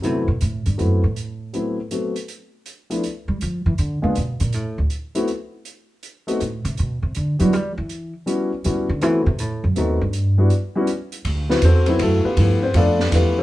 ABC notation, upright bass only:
X:1
M:3/4
L:1/8
Q:"Swing" 1/4=161
K:Dmix
V:1 name="Upright bass" clef=bass
C, B,, A,, G,, F,, A,,- | A,,4 z2 | z4 z G, | ^E, =E, D, ^C, B,, _B,, |
A,, D,, z4 | z4 A,, C, | B,, C, D, F, G, E,- | E, z3 ^C, D, |
E, C, A,, F,, ^D,, G,,- | G,,2 z4 | D,,2 E,,2 F,, z | G,,2 =F,,2 E,,2 |]